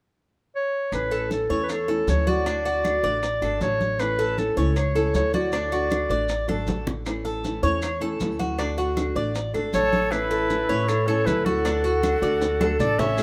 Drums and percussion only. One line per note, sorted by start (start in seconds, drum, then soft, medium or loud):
0.92 high bongo medium
0.92 high conga soft
0.92 claves medium
0.92 maracas medium
1.12 high conga soft
1.12 maracas soft
1.31 high bongo soft
1.31 high conga medium
1.31 maracas medium
1.50 high bongo soft
1.50 high conga soft
1.50 maracas soft
1.69 high bongo medium
1.69 high conga soft
1.69 claves medium
1.69 maracas medium
1.88 high bongo soft
1.88 high conga soft
1.88 maracas soft
2.08 high bongo soft
2.08 low bongo medium
2.08 high conga medium
2.08 maracas medium
2.27 high bongo soft
2.27 high conga medium
2.27 maracas soft
2.46 high bongo medium
2.46 high conga soft
2.46 claves medium
2.46 maracas medium
2.66 high conga soft
2.66 maracas soft
2.84 high bongo medium
2.84 high conga medium
2.84 claves medium
2.84 maracas medium
3.04 high bongo soft
3.04 high conga soft
3.04 maracas soft
3.23 high bongo medium
3.23 high conga soft
3.23 maracas medium
3.42 high bongo soft
3.42 high conga soft
3.42 claves medium
3.42 maracas soft
3.61 high bongo soft
3.61 low bongo medium
3.61 high conga medium
3.61 maracas medium
3.80 high bongo soft
3.80 high conga medium
3.80 maracas soft
3.99 high bongo medium
3.99 high conga soft
3.99 claves medium
3.99 maracas medium
4.19 high conga soft
4.19 maracas soft
4.38 high bongo medium
4.38 high conga medium
4.38 maracas medium
4.57 high bongo soft
4.57 high conga soft
4.57 maracas soft
4.76 high bongo medium
4.76 high conga soft
4.76 claves medium
4.76 maracas medium
4.96 high bongo soft
4.96 high conga soft
4.96 maracas soft
5.14 high bongo soft
5.14 low bongo medium
5.14 high conga medium
5.14 maracas medium
5.33 high bongo soft
5.33 high conga medium
5.33 maracas soft
5.52 high bongo medium
5.52 high conga soft
5.52 claves medium
5.52 maracas medium
5.72 high conga soft
5.72 maracas soft
5.91 high bongo soft
5.91 high conga medium
5.91 claves medium
5.91 maracas medium
6.10 high bongo soft
6.10 high conga soft
6.10 maracas soft
6.29 high bongo medium
6.29 high conga soft
6.29 maracas medium
6.48 high bongo soft
6.48 high conga medium
6.48 claves medium
6.48 maracas soft
6.67 high bongo soft
6.67 low bongo medium
6.67 high conga medium
6.67 maracas medium
6.87 high bongo soft
6.87 low conga loud
6.87 maracas soft
7.06 high bongo medium
7.06 high conga soft
7.06 claves medium
7.06 maracas medium
7.25 high conga soft
7.25 maracas soft
7.44 high bongo medium
7.44 high conga soft
7.44 maracas medium
7.63 high bongo soft
7.63 high conga soft
7.63 maracas soft
7.82 high bongo medium
7.82 high conga soft
7.82 claves medium
7.82 maracas medium
8.01 high bongo soft
8.01 high conga soft
8.01 maracas soft
8.20 high bongo soft
8.20 low bongo medium
8.20 high conga medium
8.20 maracas medium
8.39 high bongo soft
8.39 high conga medium
8.39 maracas soft
8.58 high bongo medium
8.58 high conga soft
8.58 claves medium
8.58 maracas medium
8.78 high conga soft
8.78 maracas soft
8.97 high bongo medium
8.97 high conga medium
8.97 claves medium
8.97 maracas medium
9.16 high bongo soft
9.16 high conga soft
9.16 maracas soft
9.35 high bongo medium
9.35 high conga soft
9.35 maracas medium
9.54 high bongo soft
9.54 high conga soft
9.54 claves medium
9.54 maracas soft
9.73 high bongo soft
9.73 low bongo medium
9.73 high conga medium
9.73 maracas medium
9.93 high bongo soft
9.93 high conga medium
9.93 maracas soft
10.12 high bongo medium
10.12 high conga soft
10.12 claves medium
10.12 maracas medium
10.31 high conga soft
10.31 maracas soft
10.50 high bongo medium
10.50 high conga soft
10.50 maracas medium
10.69 high bongo soft
10.69 high conga soft
10.69 maracas soft
10.88 high bongo medium
10.88 high conga soft
10.88 claves medium
10.88 maracas medium
11.08 high bongo soft
11.08 high conga soft
11.08 maracas soft
11.27 high bongo soft
11.27 low bongo medium
11.27 high conga medium
11.27 maracas medium
11.46 high bongo soft
11.46 high conga medium
11.46 maracas soft
11.65 high bongo medium
11.65 high conga soft
11.65 claves medium
11.65 maracas medium
11.84 high conga soft
11.84 maracas soft
12.03 high bongo medium
12.03 high conga medium
12.03 claves medium
12.03 maracas medium
12.23 high bongo soft
12.23 high conga soft
12.23 maracas soft
12.41 high bongo medium
12.41 high conga soft
12.41 maracas medium
12.61 low bongo medium
12.61 high conga medium
12.61 claves medium
12.61 maracas soft
12.80 low conga loud
12.80 maracas medium
12.99 low bongo medium
12.99 low conga medium
12.99 maracas soft
13.18 cowbell loud
13.18 high conga soft
13.18 claves medium
13.18 maracas medium